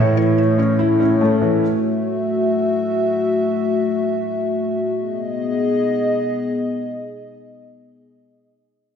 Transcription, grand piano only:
0, 0, Header, 1, 2, 480
1, 0, Start_track
1, 0, Tempo, 500000
1, 8601, End_track
2, 0, Start_track
2, 0, Title_t, "Grand piano"
2, 0, Program_c, 0, 0
2, 0, Control_c, 0, 64, 127
2, 0, Note_on_c, 0, 45, 96
2, 0, Note_on_c, 0, 52, 76
2, 0, Note_on_c, 0, 57, 89
2, 0, Note_on_c, 0, 61, 82
2, 0, Note_on_c, 0, 64, 97
2, 146, Note_off_c, 0, 52, 0
2, 161, Note_on_c, 0, 52, 77
2, 162, Note_off_c, 0, 64, 0
2, 360, Note_off_c, 0, 61, 0
2, 560, Note_on_c, 0, 61, 82
2, 561, Note_off_c, 0, 57, 0
2, 759, Note_on_c, 0, 64, 93
2, 945, Note_off_c, 0, 61, 0
2, 960, Note_off_c, 0, 45, 0
2, 960, Note_on_c, 0, 61, 89
2, 1160, Note_off_c, 0, 52, 0
2, 1162, Note_on_c, 0, 57, 84
2, 1360, Note_on_c, 0, 52, 82
2, 1559, Note_off_c, 0, 64, 0
2, 1560, Note_off_c, 0, 52, 0
2, 1560, Note_off_c, 0, 61, 0
2, 1561, Note_off_c, 0, 57, 0
2, 1570, Control_c, 0, 64, 0
2, 8601, End_track
0, 0, End_of_file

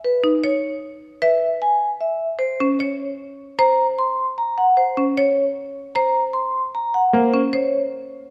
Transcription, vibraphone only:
0, 0, Header, 1, 2, 480
1, 0, Start_track
1, 0, Tempo, 394737
1, 41, Time_signature, 6, 2, 24, 8
1, 10096, End_track
2, 0, Start_track
2, 0, Title_t, "Vibraphone"
2, 0, Program_c, 0, 11
2, 55, Note_on_c, 0, 71, 66
2, 358, Note_off_c, 0, 71, 0
2, 534, Note_on_c, 0, 73, 58
2, 838, Note_off_c, 0, 73, 0
2, 1485, Note_on_c, 0, 76, 74
2, 1794, Note_off_c, 0, 76, 0
2, 1967, Note_on_c, 0, 80, 64
2, 2275, Note_off_c, 0, 80, 0
2, 2438, Note_on_c, 0, 76, 55
2, 2752, Note_off_c, 0, 76, 0
2, 2902, Note_on_c, 0, 72, 69
2, 3227, Note_off_c, 0, 72, 0
2, 3395, Note_on_c, 0, 73, 54
2, 3711, Note_off_c, 0, 73, 0
2, 4360, Note_on_c, 0, 82, 79
2, 4673, Note_off_c, 0, 82, 0
2, 4846, Note_on_c, 0, 84, 61
2, 5155, Note_off_c, 0, 84, 0
2, 5325, Note_on_c, 0, 82, 55
2, 5565, Note_on_c, 0, 78, 62
2, 5635, Note_off_c, 0, 82, 0
2, 5801, Note_on_c, 0, 72, 65
2, 5875, Note_off_c, 0, 78, 0
2, 6113, Note_off_c, 0, 72, 0
2, 6290, Note_on_c, 0, 73, 54
2, 6596, Note_off_c, 0, 73, 0
2, 7237, Note_on_c, 0, 82, 69
2, 7552, Note_off_c, 0, 82, 0
2, 7702, Note_on_c, 0, 84, 57
2, 8026, Note_off_c, 0, 84, 0
2, 8204, Note_on_c, 0, 82, 55
2, 8443, Note_on_c, 0, 78, 55
2, 8514, Note_off_c, 0, 82, 0
2, 8686, Note_on_c, 0, 72, 57
2, 8754, Note_off_c, 0, 78, 0
2, 8995, Note_off_c, 0, 72, 0
2, 9163, Note_on_c, 0, 73, 51
2, 9474, Note_off_c, 0, 73, 0
2, 10096, End_track
0, 0, End_of_file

